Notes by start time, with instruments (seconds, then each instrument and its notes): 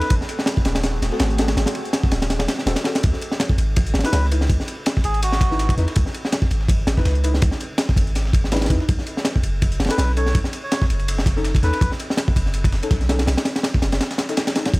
Already playing: melodica B4
0.01 snare, ride
0.10 808-style bass G#1, ambient pad A3 C4 F#4 G#4, kick, closed hi-hat, ride
0.21 snare
0.29 closed hi-hat, ride
0.39 snare
0.46 snare, closed hi-hat, ride
0.57 kick
0.65 808-style bass D#1, snare, closed hi-hat, ride
0.75 snare, ride
0.83 snare, closed hi-hat, ride
1.02 808-style bass D#1, snare, closed hi-hat, ride
1.12 synth stab C4 F#4 A4, snare
1.19 808-style bass G#1, snare, open hi-hat, ride
1.30 closed hi-hat
1.38 synth stab C4 F#4 A4, snare, closed hi-hat, ride
1.48 snare, ride
1.57 808-style bass G#1, snare, closed hi-hat, ride
1.66 snare, closed hi-hat, ride
1.75 ride
1.85 closed hi-hat
1.93 snare, closed hi-hat, ride
2.03 kick
2.11 808-style bass D#1, snare, closed hi-hat, ride
2.22 snare, closed hi-hat, ride
2.30 snare, closed hi-hat, ride
2.39 snare, ride
2.48 snare, closed hi-hat, ride
2.58 snare
2.66 808-style bass D#1, synth stab C4 F#4 A4, snare, closed hi-hat, ride
2.76 snare, closed hi-hat, ride
2.84 synth stab C4 F#4 A4, snare, ride
2.95 snare, closed hi-hat, ride
3.03 808-style bass C#2, kick, closed hi-hat, ride
3.13 snare
3.21 closed hi-hat, ride
3.32 snare
3.40 snare, closed hi-hat, ride
3.49 kick
3.58 808-style bass G#1, closed hi-hat, ride
3.76 kick, closed hi-hat, ride
3.87 closed hi-hat
3.94 808-style bass G#1, snare, ride
3.99 snare, ride
4.04 synth stab D#4 E4 B4, melodica B4, snare, closed hi-hat, ride
4.13 808-style bass C#2, snare, closed hi-hat, ride
4.31 synth stab D#4 E4 B4, closed hi-hat, ride
4.41 snare
4.49 808-style bass C#2, kick, closed hi-hat, ride
4.60 snare
4.68 closed hi-hat, ride
4.86 snare, closed hi-hat, ride
4.97 kick, snare
5.04 808-style bass G#1, melodica G#4, closed hi-hat, ride
5.14 closed hi-hat, ride
5.22 melodica F#4, closed hi-hat, ride
5.32 snare
5.41 808-style bass G#1, kick, snare, closed hi-hat, ride
5.51 synth stab D#4 E4 B4, snare
5.59 snare, closed hi-hat, ride
5.69 kick, closed hi-hat, ride
5.78 808-style bass E2, synth stab D#4 E4 B4, snare, closed hi-hat
5.88 snare, ride
5.95 808-style bass C#2, kick, closed hi-hat, ride
6.06 snare
6.14 closed hi-hat, ride
6.25 snare
6.32 snare, closed hi-hat, ride
6.42 kick
6.51 808-style bass G#1, closed hi-hat, ride
6.61 snare
6.68 kick, closed hi-hat, ride
6.87 808-style bass G#1, snare, closed hi-hat, ride
6.97 synth stab D#4 E4 B4, kick, snare
7.05 808-style bass C#2, snare, open hi-hat, ride
7.15 closed hi-hat
7.24 synth stab D#4 E4 B4, closed hi-hat, ride
7.34 snare
7.42 808-style bass C#2, kick, closed hi-hat, ride
7.51 snare
7.60 closed hi-hat, ride
7.78 snare, closed hi-hat, ride
7.89 kick, snare
7.96 808-style bass G#1, kick, closed hi-hat, ride
8.07 closed hi-hat
8.15 snare, closed hi-hat, ride
8.25 snare
8.33 808-style bass G#1, kick, closed hi-hat, ride
8.44 snare
8.52 synth stab D#4 E4 B4, snare, closed hi-hat, ride
8.56 snare, ride
8.61 snare, closed hi-hat, ride
8.65 snare, ride
8.70 808-style bass E2, synth stab D#4 E4 B4, kick, closed hi-hat, ride
8.80 snare
8.89 808-style bass B1, kick, closed hi-hat, ride
8.99 snare
9.06 closed hi-hat, ride
9.17 snare
9.25 snare, closed hi-hat, ride
9.36 kick
9.43 808-style bass F#1, closed hi-hat, ride
9.62 kick, closed hi-hat, ride
9.72 closed hi-hat
9.80 808-style bass F#1, snare, ride
9.84 snare, ride
9.89 synth stab C#4 D#4 A4, melodica B4, snare, closed hi-hat, ride
9.98 808-style bass B1, snare, closed hi-hat, ride
10.17 synth stab C#4 D#4 A4, melodica C#5, closed hi-hat, ride
10.26 snare
10.35 808-style bass B1, kick, closed hi-hat, ride
10.44 snare
10.53 closed hi-hat, ride
10.63 melodica C#5
10.72 snare, closed hi-hat, ride
10.82 kick, snare
10.90 808-style bass F#1, closed hi-hat, ride
10.99 closed hi-hat, ride
11.08 closed hi-hat, ride
11.18 snare
11.26 808-style bass F#1, kick, snare, closed hi-hat, ride
11.36 synth stab C#4 D#4 A4, snare
11.44 snare, closed hi-hat, ride
11.55 kick, closed hi-hat, ride
11.63 808-style bass D#2, synth stab C#4 D#4 A4, melodica B4, snare, closed hi-hat
11.73 snare, ride
11.81 808-style bass B1, kick, closed hi-hat, ride
11.92 snare
11.99 closed hi-hat, ride
12.10 snare
12.17 snare, closed hi-hat, ride
12.28 kick
12.36 808-style bass F#1, kick, closed hi-hat, ride
12.46 snare
12.54 closed hi-hat, ride
12.64 kick, snare, ride
12.72 808-style bass F#1, snare, open hi-hat
12.83 synth stab C#4 D#4 A4, closed hi-hat, ride
12.91 808-style bass B1, kick, snare, open hi-hat, ride
13.01 snare, closed hi-hat
13.09 synth stab C#4 D#4 A4, snare, closed hi-hat, ride
13.19 snare, ride
13.27 808-style bass B1, snare, closed hi-hat, ride
13.37 snare, ride
13.45 snare, closed hi-hat, ride
13.56 snare, ride
13.63 snare, closed hi-hat, ride
13.74 kick, snare
13.82 808-style bass F#1, snare, closed hi-hat, ride
13.92 snare, closed hi-hat, ride
14.00 snare, closed hi-hat, ride
14.11 snare, closed hi-hat
14.18 snare, closed hi-hat, ride
14.29 synth stab C#4 D#4 A4, snare, closed hi-hat
14.37 snare, closed hi-hat, ride
14.47 snare, closed hi-hat, ride
14.55 synth stab C#4 D#4 A4, snare, closed hi-hat, ride
14.65 snare, ride
14.74 808-style bass C#2, kick, closed hi-hat, ride